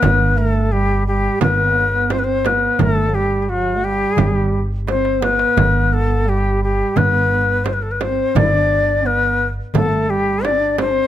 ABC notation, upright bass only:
X:1
M:4/4
L:1/8
Q:1/4=86
K:none
V:1 name="Upright bass" clef=bass
G,,,4 G,,,4 | G,,,4 G,,,4 | G,,,4 G,,,4 | G,,,4 G,,,4 |]